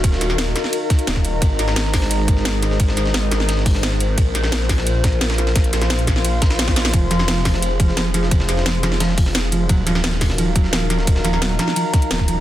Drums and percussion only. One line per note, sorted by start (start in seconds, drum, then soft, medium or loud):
0.04 kick loud
0.04 closed hi-hat medium
0.04 ride medium
0.12 snare medium
0.21 snare soft
0.21 closed hi-hat medium
0.21 ride medium
0.30 snare soft
0.38 snare loud
0.38 closed hi-hat medium
0.38 ride medium
0.47 snare soft
0.56 snare soft
0.56 snare medium
0.56 closed hi-hat medium
0.56 ride medium
0.64 snare soft
0.73 closed hi-hat medium
0.73 ride medium
0.90 kick loud
0.90 snare soft
0.90 closed hi-hat medium
0.90 ride medium
0.99 closed hi-hat soft
0.99 ride soft
1.07 snare loud
1.07 closed hi-hat medium
1.07 ride medium
1.16 kick medium
1.16 snare soft
1.25 closed hi-hat medium
1.25 ride medium
1.42 kick loud
1.42 closed hi-hat medium
1.42 ride loud
1.59 snare soft
1.59 closed hi-hat medium
1.59 ride medium
1.68 snare medium
1.68 snare soft
1.76 snare loud
1.76 closed hi-hat medium
1.76 ride loud
1.85 snare medium
1.93 kick medium
1.93 snare medium
1.93 closed hi-hat medium
1.93 open hi-hat medium
2.02 snare medium
2.11 closed hi-hat medium
2.11 ride medium
2.28 kick loud
2.28 closed hi-hat medium
2.28 ride medium
2.37 snare soft
2.45 snare loud
2.45 closed hi-hat medium
2.45 ride medium
2.62 snare soft
2.62 closed hi-hat medium
2.62 ride medium
2.71 snare soft
2.80 kick loud
2.80 closed hi-hat medium
2.80 ride medium
2.88 snare medium
2.97 snare soft
2.97 closed hi-hat medium
2.97 ride medium
3.06 snare medium
3.14 snare loud
3.14 closed hi-hat medium
3.14 ride medium
3.23 ride soft
3.31 snare medium
3.31 closed hi-hat medium
3.31 ride medium
3.40 snare soft
3.49 snare loud
3.49 closed hi-hat medium
3.49 ride medium
3.57 snare soft
3.66 kick loud
3.66 closed hi-hat medium
3.66 open hi-hat medium
3.75 snare soft
3.83 snare loud
3.83 closed hi-hat medium
3.83 ride medium
3.92 snare soft
4.00 closed hi-hat medium
4.00 ride medium
4.18 kick loud
4.18 closed hi-hat loud
4.18 ride medium
4.35 snare soft
4.35 closed hi-hat medium
4.35 ride medium
4.44 snare medium
4.44 snare soft
4.52 snare loud
4.52 closed hi-hat medium
4.52 ride medium
4.61 snare medium
4.69 kick medium
4.69 snare medium
4.69 closed hi-hat medium
4.69 open hi-hat medium
4.78 snare medium
4.87 closed hi-hat medium
4.87 ride medium
5.04 kick loud
5.04 snare loud
5.04 closed hi-hat medium
5.04 ride medium
5.13 ride soft
5.21 snare loud
5.21 snare soft
5.21 closed hi-hat medium
5.21 ride medium
5.30 snare loud
5.30 ride medium
5.38 snare soft
5.38 closed hi-hat medium
5.38 ride soft
5.47 snare soft
5.47 ride medium
5.56 kick loud
5.56 snare loud
5.56 closed hi-hat medium
5.56 ride medium
5.64 closed hi-hat soft
5.64 ride soft
5.73 snare soft
5.73 closed hi-hat medium
5.73 ride medium
5.81 snare medium
5.81 snare soft
5.81 closed hi-hat soft
5.90 snare loud
5.90 closed hi-hat loud
5.90 ride medium
5.99 closed hi-hat soft
5.99 ride soft
6.07 kick medium
6.07 snare soft
6.07 snare medium
6.07 closed hi-hat medium
6.07 ride medium
6.16 snare soft
6.25 closed hi-hat medium
6.25 ride medium
6.42 kick loud
6.42 snare loud
6.42 closed hi-hat medium
6.42 ride medium
6.50 snare loud
6.50 ride medium
6.59 snare loud
6.59 closed hi-hat loud
6.59 ride medium
6.68 kick medium
6.68 snare loud
6.68 snare soft
6.68 ride medium
6.76 snare loud
6.76 snare medium
6.76 closed hi-hat medium
6.76 ride medium
6.85 snare loud
6.85 snare medium
6.85 ride medium
6.94 kick loud
6.94 closed hi-hat loud
6.94 ride loud
7.11 snare soft
7.11 closed hi-hat medium
7.11 ride medium
7.19 snare medium
7.19 snare soft
7.28 snare loud
7.28 closed hi-hat medium
7.28 ride medium
7.37 snare medium
7.45 kick medium
7.45 snare medium
7.45 closed hi-hat medium
7.45 open hi-hat medium
7.54 snare medium
7.62 closed hi-hat loud
7.62 ride medium
7.80 kick loud
7.80 closed hi-hat medium
7.80 ride medium
7.88 snare soft
7.97 snare loud
7.97 closed hi-hat loud
7.97 ride medium
8.14 snare soft
8.14 closed hi-hat medium
8.14 ride medium
8.23 snare soft
8.31 kick loud
8.31 closed hi-hat medium
8.31 ride medium
8.40 snare medium
8.49 snare soft
8.49 closed hi-hat medium
8.49 ride medium
8.57 snare medium
8.66 snare loud
8.66 closed hi-hat medium
8.66 ride medium
8.75 ride soft
8.83 snare medium
8.83 closed hi-hat medium
8.83 ride medium
8.92 snare soft
9.00 snare loud
9.00 closed hi-hat medium
9.00 ride medium
9.09 snare soft
9.18 kick loud
9.18 closed hi-hat medium
9.18 open hi-hat medium
9.26 snare soft
9.35 snare loud
9.35 closed hi-hat loud
9.35 ride medium
9.43 snare soft
9.52 closed hi-hat medium
9.52 ride medium
9.69 kick loud
9.69 closed hi-hat medium
9.69 ride medium
9.87 snare soft
9.87 closed hi-hat medium
9.87 ride medium
9.95 snare medium
9.95 snare soft
10.04 snare loud
10.04 closed hi-hat medium
10.04 ride medium
10.12 snare medium
10.21 kick medium
10.21 snare medium
10.21 closed hi-hat medium
10.21 open hi-hat medium
10.30 snare medium
10.38 closed hi-hat medium
10.38 ride medium
10.56 kick loud
10.56 closed hi-hat medium
10.56 ride medium
10.64 snare soft
10.73 snare loud
10.73 closed hi-hat medium
10.73 ride medium
10.90 snare soft
10.90 closed hi-hat medium
10.90 ride medium
10.99 snare soft
11.07 kick loud
11.07 closed hi-hat medium
11.07 ride loud
11.16 snare medium
11.25 snare soft
11.25 closed hi-hat medium
11.25 ride medium
11.33 snare soft
11.42 snare loud
11.42 closed hi-hat medium
11.42 ride medium
11.50 snare soft
11.59 snare medium
11.59 closed hi-hat medium
11.59 ride medium
11.68 snare soft
11.76 closed hi-hat medium
11.76 ride medium
11.94 kick loud
11.94 snare soft
11.94 closed hi-hat medium
11.94 ride medium
12.02 closed hi-hat soft
12.02 ride soft
12.11 snare loud
12.11 closed hi-hat medium
12.11 ride medium
12.19 kick medium
12.19 snare soft
12.28 closed hi-hat medium
12.28 ride medium